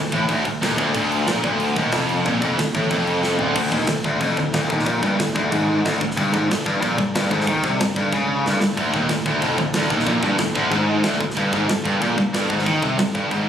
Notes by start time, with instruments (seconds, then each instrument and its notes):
Already playing: picked electric bass D1
0.12 picked electric bass A1, distorted electric guitar A2, kick, crash
0.29 picked electric bass D1, distorted electric guitar D2, kick, crash
0.45 picked electric bass D1, distorted electric guitar D2, kick, crash
0.62 picked electric bass D#1, distorted electric guitar D#2, snare, crash
0.78 picked electric bass D1, distorted electric guitar D2, kick, crash
0.95 picked electric bass D1, distorted electric guitar D2, kick, crash
1.12 crash
1.27 picked electric bass A#1, distorted electric guitar A#2, snare, crash
1.44 picked electric bass D1, distorted electric guitar D2, kick, crash
1.60 crash
1.76 picked electric bass D#1, distorted electric guitar D#2, kick, crash
1.92 picked electric bass F1, distorted electric guitar F2, snare, crash
2.09 crash
2.26 picked electric bass A#1, distorted electric guitar A#2, kick, crash
2.42 distorted electric guitar F2, kick, crash
2.58 picked electric bass D1, distorted electric guitar D2, snare, crash
2.75 picked electric bass A1, distorted electric guitar A2, kick, crash
2.90 picked electric bass F1, distorted electric guitar F2, kick, crash
3.07 crash
3.23 snare
3.39 picked electric bass D1, distorted electric guitar D2, floor tom
3.55 picked electric bass D1, distorted electric guitar D2, string section D3 E4 A4, kick, crash
3.72 picked electric bass D#1, distorted electric guitar D#2, kick
3.87 picked electric bass D1, distorted electric guitar D2, snare, crash
4.04 picked electric bass D1, distorted electric guitar D2, kick
4.21 picked electric bass F1, distorted electric guitar F2, kick, crash
4.37 picked electric bass D1, distorted electric guitar D2, kick
4.53 picked electric bass D1, distorted electric guitar D2, snare, crash
4.70 picked electric bass D#1, distorted electric guitar D#2, kick
4.79 snare
4.86 picked electric bass A#1, distorted electric guitar A#2, kick, crash
5.03 picked electric bass G1, distorted electric guitar G2, kick
5.19 picked electric bass D1, distorted electric guitar D2, snare, crash
5.35 picked electric bass D1, distorted electric guitar D2, kick
5.51 picked electric bass G#1, distorted electric guitar G#2, kick, crash
5.85 picked electric bass D1, distorted electric guitar D2, snare, crash
6.01 picked electric bass D1, distorted electric guitar D2, kick
6.11 snare
6.17 picked electric bass G1, distorted electric guitar G2, string section G3 A4 D5, kick, crash
6.33 picked electric bass G#1, distorted electric guitar G#2, kick
6.50 picked electric bass G1, distorted electric guitar G2, snare, crash
6.66 picked electric bass G1, distorted electric guitar G2, kick
6.81 picked electric bass A#1, distorted electric guitar A#2, kick, crash
6.98 picked electric bass G1, distorted electric guitar G2, kick
7.14 picked electric bass G1, distorted electric guitar G2, snare, crash
7.31 picked electric bass G#1, distorted electric guitar G#2, kick
7.41 snare
7.47 picked electric bass D#2, distorted electric guitar D#3, kick, crash
7.64 picked electric bass C2, distorted electric guitar C3, kick
7.79 picked electric bass G1, distorted electric guitar G2, snare, crash
7.96 picked electric bass G1, distorted electric guitar G2, kick
8.13 picked electric bass C#2, distorted electric guitar C#3, kick, crash
8.44 picked electric bass G1, distorted electric guitar G2, snare
8.61 picked electric bass G1, distorted electric guitar G2, snare
8.77 picked electric bass D1, distorted electric guitar D2, string section D3 E4 A4, kick, crash
8.94 picked electric bass D#1, distorted electric guitar D#2, kick
9.09 picked electric bass D1, distorted electric guitar D2, snare, crash
9.26 picked electric bass D1, distorted electric guitar D2, kick
9.42 picked electric bass F1, distorted electric guitar F2, kick, crash
9.58 picked electric bass D1, distorted electric guitar D2, kick
9.73 picked electric bass D1, distorted electric guitar D2, snare, crash
9.90 picked electric bass D#1, distorted electric guitar D#2, kick
9.99 snare
10.06 picked electric bass A#1, distorted electric guitar A#2, kick, crash
10.23 picked electric bass G1, distorted electric guitar G2, kick
10.38 picked electric bass D1, distorted electric guitar D2, snare, crash
10.55 picked electric bass D1, distorted electric guitar D2, kick
10.71 picked electric bass G#1, distorted electric guitar G#2, kick, crash
11.03 picked electric bass D1, distorted electric guitar D2, snare, crash
11.21 picked electric bass D1, distorted electric guitar D2, kick
11.30 snare
11.37 picked electric bass G1, distorted electric guitar G2, string section G3 D4 A4, kick, crash
11.53 picked electric bass G#1, distorted electric guitar G#2, kick
11.69 distorted electric guitar G2, snare, crash
11.85 picked electric bass G1, distorted electric guitar G2, kick
12.01 picked electric bass A#1, distorted electric guitar A#2, kick, crash
12.17 picked electric bass G1, distorted electric guitar G2, kick
12.33 picked electric bass G1, distorted electric guitar G2, snare, crash
12.50 picked electric bass G#1, distorted electric guitar G#2, kick
12.59 snare
12.66 picked electric bass D#2, distorted electric guitar D#3, kick, crash
12.82 picked electric bass C2, distorted electric guitar C3, kick
12.98 picked electric bass G1, distorted electric guitar G2, snare, crash
13.15 picked electric bass G1, distorted electric guitar G2, kick
13.31 picked electric bass G#1, distorted electric guitar G#2, kick, crash